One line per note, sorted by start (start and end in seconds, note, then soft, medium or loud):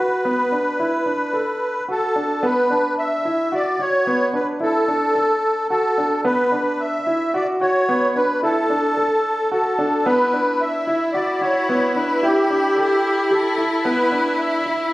0.00 0.19 F#4 medium
0.00 1.84 B4 medium
0.25 0.47 B3 medium
0.52 0.74 D4 medium
0.80 1.01 E4 medium
1.06 1.28 D4 medium
1.33 1.77 A4 medium
1.88 2.10 F#4 medium
1.88 2.46 A4 medium
2.16 2.37 D4 medium
2.43 2.65 B3 medium
2.43 2.94 B4 medium
2.70 3.14 D4 medium
2.70 3.24 A5 soft
2.98 3.54 E5 medium
3.25 3.47 E4 medium
3.52 3.74 F#4 medium
3.52 3.82 D5 medium
3.79 4.01 F#4 medium
3.79 4.31 C#5 medium
4.07 4.28 B3 medium
4.33 4.55 D4 medium
4.33 4.47 B4 medium
4.60 4.82 E4 medium
4.60 5.67 A4 medium
4.88 5.10 D4 medium
5.15 5.59 A4 medium
5.70 5.92 F#4 medium
5.70 6.21 A4 medium
5.98 6.19 D4 medium
6.25 6.46 B3 medium
6.25 6.81 B4 medium
6.52 6.95 D4 medium
6.80 7.36 E5 medium
7.07 7.28 E4 medium
7.34 7.56 F#4 medium
7.34 7.47 D5 medium
7.61 7.83 F#4 medium
7.61 8.17 C#5 medium
7.89 8.10 B3 medium
8.15 8.37 D4 medium
8.15 8.41 B4 medium
8.43 8.64 E4 medium
8.43 9.50 A4 medium
8.70 8.91 D4 medium
8.97 9.40 A4 medium
9.52 9.73 F#4 medium
9.52 10.08 A4 medium
9.79 10.00 D4 medium
10.06 10.28 B3 medium
10.06 14.93 E4 medium
10.06 10.62 B4 medium
10.33 10.76 D4 medium
10.61 11.11 E5 medium
10.87 11.09 E4 medium
11.13 11.36 F#4 medium
11.13 11.42 D5 medium
11.41 11.63 F#4 medium
11.41 11.92 C#5 medium
11.69 11.90 B3 medium
11.95 12.17 D4 medium
11.95 12.21 B4 medium
12.22 12.45 E4 medium
12.22 13.34 G4 medium
12.50 12.72 D4 medium
12.77 13.20 A4 medium
13.31 13.53 G4 medium
13.31 13.87 A4 medium
13.58 13.80 E4 medium
13.83 14.07 B3 medium
13.83 14.40 B4 medium
14.12 14.55 D4 medium
14.38 14.89 E5 medium
14.66 14.88 E4 medium